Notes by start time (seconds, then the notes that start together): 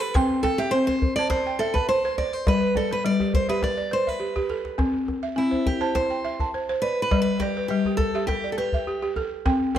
Already playing: A4
0.00 B4
0.14 C4 C5 G5, djembe slap, djembe bass
0.30 djembe slap
0.43 A4 G5, djembe slap, djembe tone
0.58 G4 E5
0.71 C4 C5
0.87 C5, djembe tone
1.02 djembe bass
1.16 C5 D5 A5, djembe slap
1.30 C5, djembe slap, djembe tone
1.47 G5
1.59 A4 E5, djembe slap
1.74 B4 A5, djembe tone, djembe bass
1.89 C5
2.05 C5, djembe slap
2.18 D5, djembe slap, djembe tone
2.33 C5
2.47 G3 B4 D5, djembe slap, djembe bass
2.76 A4 D5, djembe slap, djembe tone
2.91 B4, djembe slap
3.05 G3 D5
3.20 G4, djembe slap, djembe tone
3.34 C5, djembe bass
3.49 G4 B4 E5, djembe slap
3.62 D5, djembe slap, djembe tone
3.77 D5
3.91 B4 C5
4.07 B4 E5, djembe tone
4.20 G4
4.36 G4, djembe bass
4.49 A4, djembe slap
4.65 djembe slap
4.78 C4, djembe slap, djembe bass
4.94 djembe slap
5.08 djembe slap, djembe tone
5.23 E5
5.36 C4 E4
5.51 C5, djembe tone
5.66 G4, djembe bass
5.81 C5 A5, djembe slap
5.95 C5, djembe slap, djembe tone
6.10 G5
6.24 E5, djembe slap
6.40 A5, djembe tone, djembe bass
6.54 C5
6.68 C5, djembe slap
6.82 B4 D5, djembe slap
7.02 B4
7.11 G3 D5, djembe slap, djembe bass
7.22 B4
7.27 djembe slap
7.40 G4 D5, djembe slap, djembe tone
7.57 B4
7.68 G3 G4
7.85 G4, djembe tone
7.97 A4, djembe bass
8.14 G4 E5, djembe slap
8.27 G4, djembe slap, djembe tone
8.44 D5
8.52 A4
8.57 G4 B4, djembe slap
8.73 E5, djembe tone, djembe bass
8.87 G4
9.02 G4, djembe slap
9.16 A4, djembe slap, djembe tone
9.46 C4 G5, djembe slap, djembe bass
9.62 djembe slap
9.75 G5, djembe slap, djembe tone